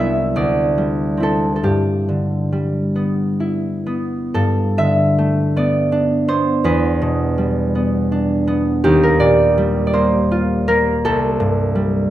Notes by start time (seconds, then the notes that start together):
Already playing: C2 F#3 B3 E4 E5 G5 B5
0.36 D2 D5
0.78 G3
1.17 C4 E4
1.23 A4
1.56 A4
1.63 G2 G4
2.09 D3
2.52 G3
2.96 B3
3.40 E4
3.86 B3
4.34 G2 A4
4.78 D3 E5
5.18 A3
5.56 B3 D5
5.92 D4
6.28 B3 C5
6.64 E2 B4
7.02 B2
7.38 G3
7.75 B3
8.12 D4
8.47 B3
8.84 D#2 G4
9.03 A#4
9.20 A#2 D5
9.58 G3
9.87 D5
9.93 A#3 C5
10.32 F4
10.68 A#3 A#4
11.05 C2 A4
11.40 G2
11.75 G3